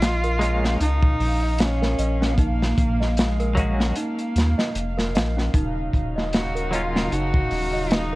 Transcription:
Already playing: sub bass A#1, celesta D#4 D#5, cello F4, synth drone F5
0.02 snare, closed hi-hat
0.23 celesta A#4, closed hi-hat
0.39 clean electric guitar G#3 A#3 C#4, celesta D#5, closed hi-hat
0.44 clean electric guitar F4
0.64 celesta C#4, snare
0.80 sub bass C#2, celesta D#4, cello D#4, closed hi-hat
1.03 kick
1.20 sub bass A#1, open hi-hat
1.43 celesta D#5
1.59 cello C#4, snare, closed hi-hat
1.82 celesta A#4, snare
1.99 sub bass A#1, celesta D#5, closed hi-hat
2.21 celesta C#4, snare
2.33 cello B3
2.38 cello A#3, celesta D#4, kick, closed hi-hat
2.62 snare
2.78 sub bass A#1, kick, closed hi-hat
3.00 celesta D#5, snare
3.17 cello G#3, snare, closed hi-hat
3.40 celesta A#4, closed hi-hat
3.55 clean electric guitar F#3 A#3 C#4, celesta D#5, kick, closed hi-hat
3.60 clean electric guitar F#4
3.79 celesta C#4, snare
3.96 cello A#3, celesta D#4, closed hi-hat
4.18 closed hi-hat
4.36 sub bass D#2, snare, closed hi-hat
4.58 celesta D#5, snare
4.75 sub bass F1, closed hi-hat
4.97 celesta A#4, snare
5.14 sub bass A#1, celesta D#5, snare, closed hi-hat
5.37 celesta C#4, snare
5.54 sub bass D#1, string section C#3 F#3 D#4, celesta D#4, kick, closed hi-hat
5.93 sub bass D#1, kick, closed hi-hat
6.16 celesta D#5, snare
6.33 cello F#4, snare, closed hi-hat
6.55 celesta A#4, closed hi-hat
6.71 clean electric guitar F#3 A#3 C#4, cello F4, celesta D#5, closed hi-hat
6.75 clean electric guitar F4
6.95 celesta C#4, snare
7.12 sub bass F#1, celesta D#4, cello F#4, closed hi-hat
7.34 kick
7.51 sub bass D#1, open hi-hat
7.73 celesta D#5
7.91 cello D#4, snare, closed hi-hat

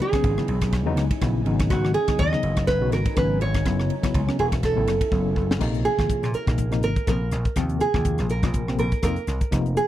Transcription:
Already playing: ambient pad E3 B3 C#4 D#4 G#5
0.00 nylon-string guitar G#4, ride
0.12 tine electric piano C#3 F#3 B3 C#4, muted slap bass stroke, kick, cross-stick, ride
0.24 slap bass G#1, kick, ride
0.37 tine electric piano C#3 F#3 B3 E4, cross-stick
0.48 slap bass B1, tine electric piano B3 C#4, ride
0.61 kick, cross-stick, ride
0.73 tine electric piano B3 E4, kick, cross-stick, ride
0.85 slap bass E2, tine electric piano C#3 F#3 B3 D#4
0.97 slap bass C#2, cross-stick, ride
1.11 kick, ride
1.21 slap bass A#1, tine electric piano C#3 F#3 B3 E4, kick, cross-stick, ride
1.45 slap bass G#1, tine electric piano C#3 F#3 B3 D#4, ambient pad F#3 A#4, ride
1.60 kick, cross-stick, ride
1.70 slap bass G#1, nylon-string guitar F#4, kick, cross-stick, ride
1.85 cross-stick
1.94 nylon-string guitar G#4, ride
2.08 tine electric piano C#3 F#3 B3 D#4, muted slap bass stroke, kick, cross-stick, ride
2.19 slap bass D#2, nylon-string guitar D#5, kick, ride
2.32 tine electric piano C#3 F#3 B3 D#4, cross-stick
2.43 slap bass F#1, tine electric piano B3, ride
2.57 kick, cross-stick, ride
2.67 tine electric piano B3 F#4, nylon-string guitar B4, kick, cross-stick, ride
2.81 slap bass B1, tine electric piano C#3 F#3 B3 F#4
2.92 slap bass G#1, nylon-string guitar A#4, cross-stick, ride
3.05 tine electric piano C#4, kick, ride
3.16 slap bass G#1, tine electric piano C#3 F#3 B3 C#4, nylon-string guitar B4, kick, cross-stick, ride
3.41 slap bass G#1, tine electric piano F4, nylon-string guitar C#5, ride
3.54 kick, cross-stick, ride
3.64 slap bass F#1, tine electric piano C#3 F#3 B3 E4, ambient pad A3 C#4 E4, kick, cross-stick, ride
3.80 cross-stick
3.90 ride
4.02 tine electric piano C#3 F#3 B3 E4, muted slap bass stroke, kick, cross-stick, ride
4.14 slap bass C#2, kick, ride
4.27 tine electric piano C#3 F#3 B3 C#4, cross-stick
4.38 slap bass E1, tine electric piano B3, nylon-string guitar G#4, ride
4.52 kick, cross-stick, ride
4.62 tine electric piano B3 E4, nylon-string guitar A4, kick, cross-stick, ride
4.76 slap bass A1, tine electric piano C#3 F#3 B3 E4
4.87 slap bass F#1, cross-stick, ride
5.01 tine electric piano E4, kick, ride
5.11 slap bass F#1, tine electric piano C#3 F#3 B3 E4, kick
5.36 slap bass F#1, tine electric piano E4, kick
5.51 snare
5.59 slap bass A#1, tine electric piano C3 F3 A#3 D#4, kick, cross-stick, crash
5.74 closed hi-hat
5.85 nylon-string guitar G#4, closed hi-hat
5.98 slap bass G#1, tine electric piano C3 F3 A#3 F4, kick, cross-stick
6.09 muted slap bass stroke, kick, closed hi-hat
6.23 slap bass A#2, cross-stick, closed hi-hat
6.34 nylon-string guitar A#4, muted slap bass stroke, closed hi-hat
6.46 slap bass A#1, tine electric piano C3 F3 A#3 D#4, kick, cross-stick, closed hi-hat
6.58 kick, closed hi-hat
6.71 tine electric piano C3 F3 A#3 D#4, cross-stick, closed hi-hat
6.83 slap bass G#1, nylon-string guitar A#4, closed hi-hat
6.96 tine electric piano F4, muted slap bass stroke, kick, closed hi-hat
7.07 slap bass A#1, tine electric piano C3 F3 A#3 C4, nylon-string guitar A#4, kick, cross-stick, closed hi-hat
7.20 tine electric piano A#3 D#4
7.31 slap bass A#1, cross-stick, closed hi-hat
7.45 kick, closed hi-hat
7.56 slap bass D#2, tine electric piano C3 F3 A#3 C4, kick, cross-stick, closed hi-hat
7.69 closed hi-hat
7.80 nylon-string guitar G#4, muted slap bass stroke, closed hi-hat
7.94 slap bass D#2, tine electric piano C3 F3 A#3 F4, kick, cross-stick
8.05 kick, closed hi-hat
8.18 slap bass A#1, cross-stick, closed hi-hat
8.30 nylon-string guitar A#4, closed hi-hat
8.43 slap bass A#1, tine electric piano C3 F3 A#3 F4, kick, cross-stick, closed hi-hat
8.54 kick, closed hi-hat
8.68 tine electric piano C3 F3 A#3 C4, cross-stick
8.78 slap bass A#1, nylon-string guitar A#4, closed hi-hat
8.92 kick, closed hi-hat
9.03 slap bass F2, tine electric piano C3 F3 A#3 D#4, nylon-string guitar A#4, kick, cross-stick, closed hi-hat
9.16 muted slap bass stroke, closed hi-hat
9.27 slap bass C2, cross-stick, closed hi-hat
9.41 kick, closed hi-hat
9.51 slap bass F1, tine electric piano C3 F3 A#3 D#4, kick, cross-stick, closed hi-hat
9.66 closed hi-hat
9.77 nylon-string guitar G#4, closed hi-hat

